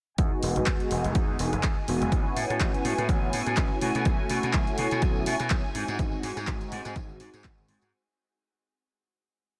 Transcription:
0.18 slap bass E2, analog polysynth G#3 B3 D#4 F#4, violin section G#5, kick, closed hi-hat
0.32 tambourine
0.43 slap bass E1, open hi-hat
0.56 slap bass E1, closed hi-hat, tambourine
0.66 slap bass E2, kick, clap, closed hi-hat
0.80 closed hi-hat
0.91 slap bass E1, open hi-hat
1.04 slap bass E1, closed hi-hat, tambourine
1.15 kick, closed hi-hat
1.30 tambourine
1.39 slap bass E1, analog polysynth G#3 B3 D#4 F#4, open hi-hat
1.53 slap bass E1, cross-stick, closed hi-hat, tambourine
1.63 slap bass E2, kick, clap, closed hi-hat
1.78 tambourine
1.88 slap bass E1, analog polysynth G#3 B3 D#4 F#4, open hi-hat
2.01 slap bass E1, closed hi-hat, tambourine
2.11 slap bass A1, analog polysynth B3 C#4 E4 F#4, kick, closed hi-hat
2.26 tambourine
2.36 slap bass A2, open hi-hat
2.50 slap bass A2, cross-stick, closed hi-hat, tambourine
2.60 slap bass A1, kick, clap, closed hi-hat
2.74 closed hi-hat, tambourine
2.85 slap bass A2, open hi-hat
2.98 slap bass A2, cross-stick, closed hi-hat, tambourine
3.09 slap bass A1, kick, closed hi-hat
3.22 tambourine
3.33 slap bass A2, open hi-hat
3.46 slap bass A2, cross-stick, closed hi-hat, tambourine
3.57 slap bass A1, kick, clap, closed hi-hat
3.70 tambourine
3.81 slap bass B2, analog polysynth A3 C#4 E4 F#4, open hi-hat
3.95 slap bass B2, closed hi-hat, tambourine
4.04 slap bass B1, analog polysynth A3 C#4 E4 F#4, kick, closed hi-hat
4.19 tambourine
4.29 slap bass B2, open hi-hat
4.43 slap bass B2, closed hi-hat, tambourine
4.53 slap bass B1, kick, clap, closed hi-hat
4.67 closed hi-hat, tambourine
4.78 slap bass B2, open hi-hat
4.91 slap bass B2, closed hi-hat, tambourine
5.02 slap bass B1, kick, closed hi-hat
5.15 tambourine
5.26 slap bass B2, analog polysynth A3 C#4 E4 F#4, open hi-hat
5.39 slap bass B2, cross-stick, closed hi-hat, tambourine
5.50 slap bass B1, kick, clap, closed hi-hat, tambourine
5.64 tambourine
5.75 slap bass G#2, analog polysynth G#3 C4 D#4 F#4, open hi-hat
5.88 slap bass G#2, closed hi-hat, tambourine
5.98 slap bass G#1, analog polysynth G#3 C4 D#4 F#4, kick, closed hi-hat
6.12 tambourine
6.23 slap bass G#2, open hi-hat
6.37 slap bass G#2, cross-stick, closed hi-hat, tambourine
6.47 slap bass G#1, kick, clap, closed hi-hat
6.60 closed hi-hat, tambourine
6.72 slap bass G#2, open hi-hat
6.85 slap bass G#2, cross-stick, closed hi-hat, tambourine
6.96 slap bass G#1, kick, closed hi-hat, tambourine
7.09 tambourine
7.20 slap bass G#2, open hi-hat
7.33 slap bass G#2, cross-stick, closed hi-hat, tambourine
7.44 slap bass G#1, kick, clap, closed hi-hat
7.58 tambourine
7.68 slap bass G#2, analog polysynth G#3 C4 D#4 F#4, open hi-hat
7.81 slap bass G#2, closed hi-hat, tambourine

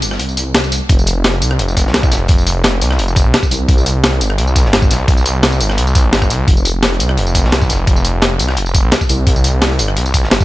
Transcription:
0.02 detuned saw bass G1, closed hi-hat, tambourine
0.11 cross-stick, snare
0.19 detuned saw bass C2, closed hi-hat
0.29 tambourine
0.37 closed hi-hat, tambourine
0.46 detuned saw bass C2
0.55 snare, closed hi-hat
0.64 tambourine
0.72 detuned saw bass C2, closed hi-hat, tambourine
0.89 detuned saw bass F1, kick, closed hi-hat
0.99 tambourine
1.06 closed hi-hat, tambourine
1.16 detuned saw bass F1
1.24 snare, closed hi-hat
1.33 closed hi-hat
1.42 detuned saw bass C2, closed hi-hat, tambourine
1.51 cross-stick
1.59 detuned saw bass F1, closed hi-hat
1.68 tambourine
1.77 kick, closed hi-hat, tambourine
1.86 detuned saw bass C2, snare
1.94 snare, closed hi-hat
2.03 kick, tambourine
2.11 detuned saw bass F1, snare, closed hi-hat, tambourine
2.28 detuned saw bass F1, kick, closed hi-hat
2.38 tambourine
2.47 closed hi-hat, tambourine
2.56 detuned saw bass F1
2.64 snare, closed hi-hat
2.81 detuned saw bass C2, closed hi-hat, tambourine
2.91 cross-stick, snare
2.99 detuned saw bass F1, closed hi-hat
3.08 tambourine
3.16 kick, closed hi-hat, tambourine
3.25 detuned saw bass C2
3.34 snare, closed hi-hat
3.43 kick, tambourine
3.51 detuned saw bass C2, closed hi-hat, tambourine
3.69 detuned saw bass C2, kick, closed hi-hat
3.78 tambourine
3.86 closed hi-hat, tambourine
3.95 detuned saw bass C2
4.04 snare, closed hi-hat
4.13 closed hi-hat
4.21 detuned saw bass G1, closed hi-hat, tambourine
4.30 cross-stick
4.38 detuned saw bass C2, closed hi-hat
4.47 tambourine
4.56 kick, closed hi-hat, tambourine
4.65 detuned saw bass G1, snare
4.73 snare, closed hi-hat
4.82 kick, tambourine
4.91 detuned saw bass C2, snare, closed hi-hat, tambourine
5.08 detuned saw bass C2, kick, closed hi-hat
5.17 tambourine
5.26 closed hi-hat, tambourine
5.35 detuned saw bass C2
5.43 snare, closed hi-hat
5.52 tambourine
5.60 detuned saw bass G1, closed hi-hat, tambourine
5.70 cross-stick, snare
5.78 detuned saw bass C2, closed hi-hat
5.87 tambourine
5.95 kick, closed hi-hat, tambourine
6.04 detuned saw bass G1
6.13 snare, closed hi-hat
6.22 kick, cross-stick, tambourine
6.30 detuned saw bass C2, closed hi-hat, tambourine
6.48 detuned saw bass F1, kick, closed hi-hat
6.57 tambourine
6.65 closed hi-hat, tambourine
6.74 detuned saw bass F1
6.83 snare, closed hi-hat
6.93 closed hi-hat
7.00 detuned saw bass C2, closed hi-hat, tambourine
7.09 cross-stick
7.17 detuned saw bass F1, closed hi-hat
7.27 tambourine
7.35 kick, closed hi-hat, tambourine
7.44 detuned saw bass C2, snare
7.52 snare, closed hi-hat
7.61 kick, tambourine
7.69 detuned saw bass F1, snare, closed hi-hat, tambourine
7.87 detuned saw bass F1, kick, closed hi-hat
7.96 tambourine
8.05 closed hi-hat, tambourine
8.14 detuned saw bass F1
8.22 snare, closed hi-hat
8.39 detuned saw bass C2, closed hi-hat, tambourine
8.49 cross-stick, snare
8.57 detuned saw bass F1, closed hi-hat
8.66 tambourine
8.74 kick, closed hi-hat, tambourine
8.84 detuned saw bass C2
8.92 snare, closed hi-hat
9.01 kick, tambourine
9.09 detuned saw bass C2, closed hi-hat, tambourine
9.27 detuned saw bass C2, kick, closed hi-hat
9.36 tambourine
9.44 closed hi-hat, tambourine
9.53 detuned saw bass C2
9.62 snare, closed hi-hat
9.71 closed hi-hat
9.79 detuned saw bass G1, closed hi-hat, tambourine
9.88 cross-stick
9.97 detuned saw bass C2, closed hi-hat
10.06 tambourine
10.14 kick, closed hi-hat, tambourine
10.23 detuned saw bass G1, snare
10.31 snare, closed hi-hat
10.40 kick, tambourine

